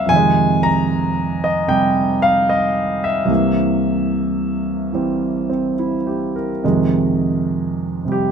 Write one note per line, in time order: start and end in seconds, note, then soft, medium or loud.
0.00 0.09 C3 soft
0.00 0.11 E3 soft
0.00 0.11 G3 soft
0.00 0.12 A#3 medium
0.00 0.13 E5 medium
0.00 0.12 F5 medium
0.05 3.27 F2 soft
0.05 1.66 C3 soft
0.05 0.66 G#5 loud
0.12 3.30 D#3 soft
0.12 3.32 G#3 medium
0.63 1.46 A#5 medium
1.44 1.68 D#5 medium
1.68 3.25 C3 soft
1.68 3.29 G3 soft
1.68 2.25 G5 medium
2.22 2.49 F5 medium
2.49 3.06 D#5 medium
3.04 5.74 E5 medium
3.25 6.62 C2 soft
3.25 6.62 C3 soft
3.25 4.90 E3 soft
3.30 6.64 A#3 soft
4.92 6.63 E3 soft
4.92 6.64 G3 soft
4.92 5.48 C4 soft
5.50 5.94 C4 soft
5.79 6.33 E4 soft
6.07 6.51 G4 soft
6.36 6.80 A#4 soft
6.63 8.32 F2 soft
6.63 8.03 C3 soft
6.63 8.32 D#3 soft
6.63 8.32 G#3 soft
8.05 8.32 C3 soft
8.05 8.32 G3 soft
8.12 8.27 G4 medium